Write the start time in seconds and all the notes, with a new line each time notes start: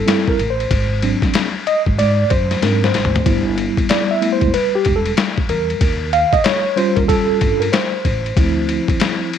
Already playing: A4
0.06 G3 C4 E4, snare, hi-hat pedal, ride
0.28 A#4, kick
0.39 A1, ride
0.50 C5
0.60 ride
0.71 G#1, kick, ride
1.02 F#3 C4 D4, ride
1.22 kick, snare, ride
1.34 snare, hi-hat pedal, ride
1.67 D#5, ride
1.86 G#1, kick
1.98 G#2 D5, ride
2.30 F#2 C5, kick, ride
2.51 snare, ride
2.62 G#2 F#3 C4 D4 A#4, snare, hi-hat pedal, ride
2.84 C5, snare
2.94 G#1, snare, ride
3.05 floor tom
3.15 floor tom, ride
3.26 G1 G3 B3 E4, kick, ride
3.58 ride
3.77 kick, ride
3.89 D5, snare, hi-hat pedal, ride
4.11 E5
4.21 A3 B3 E4, ride
4.33 C5
4.41 E1, kick, ride
4.54 B4, ride
4.75 G4
4.85 E1, kick, ride
4.96 A4
5.06 ride
5.17 snare, hi-hat pedal, ride
5.38 kick
5.49 E2 A#4, ride
5.70 ride
5.81 D#2, kick, ride
6.13 F5, ride
6.33 D#5, kick, ride
6.44 C#5, snare, hi-hat pedal, ride
6.76 G3 C#4 F4 C5, ride
6.96 D#2 A#4, kick, ride
7.08 A4, kick, ride
7.29 muted upright bass stroke
7.41 G2, kick, ride
7.60 A#4, ride
7.72 C5, snare, hi-hat pedal, ride
8.05 A1, kick, ride
8.26 ride
8.36 D2 F3 C4 E4, kick, ride
8.69 ride
8.88 kick, ride
9.00 snare, hi-hat pedal, ride
9.33 ride